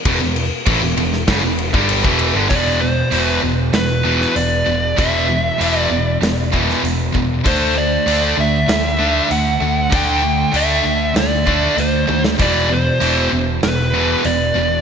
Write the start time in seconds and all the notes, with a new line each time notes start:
0.05 E1 E2 B2, kick, crash
0.21 E1 E2 B2
0.36 crash
0.66 A1 A2 E3, kick, crash
0.81 E1 E2 B2
0.96 E1 E2 B2, crash
1.13 snare
1.28 F#1 F#2 C#3, kick, snare, crash
1.43 E1 E2 B2
1.59 crash
1.73 G1 G2 D3 G3, kick
1.89 crash
2.04 E1 E2 B2 E3, kick
2.19 crash
2.34 G1 G2 D3
2.49 E1 E2 B2 E3 D5, kick, open hi-hat
2.81 E2 B2 C5
3.12 E1 E2 B2 E3, open hi-hat
3.22 B4
3.43 E1 E2 B2
3.73 E1 E2 B2 B4, snare, open hi-hat
4.05 E2 B2 E3
4.21 snare
4.35 E1 E2 B2 D5, open hi-hat
4.66 E1 E2 B2
4.97 E1 E2 B2 E3 E5, kick, open hi-hat
5.29 E2 B2
5.60 E1 E2 B2 E3, open hi-hat
5.81 D5
5.91 E1 E2 B2
6.22 E1 E2 B2, snare, open hi-hat
6.52 E2 B2 E3, kick
6.70 snare
6.82 E1 E2 B2, open hi-hat
7.12 E1 E2 B2, kick
7.44 D2 D3 A3 D4 C5, kick, open hi-hat
7.76 D3 A3 D5
8.07 D2 D3 A3 D4, open hi-hat
8.38 D2 D3 A3 E5
8.68 D2 D3 A3, snare, open hi-hat
8.99 D3 A3 D4
9.29 D2 D3 A3 F#5, open hi-hat
9.61 D2 D3 A3
9.92 D2 D3 A3 D4 G5, kick, open hi-hat
10.23 D3 A3
10.54 D2 D3 A3 D4 E5, open hi-hat
10.84 D2 D3 A3
11.16 D2 D3 A3 D5, snare, open hi-hat
11.47 D3 A3 D4, kick
11.77 D2 D3 A3 C5, open hi-hat
12.07 D2 D3 A3, high tom
12.24 snare
12.38 E1 E2 B2 E3 D5, kick, open hi-hat
12.69 E2 B2 C5
13.00 E1 E2 B2 E3, open hi-hat
13.32 E1 E2 B2
13.63 E1 E2 B2 B4, snare, open hi-hat
13.94 E2 B2 E3
14.24 E1 E2 B2 D5, open hi-hat
14.54 E1 E2 B2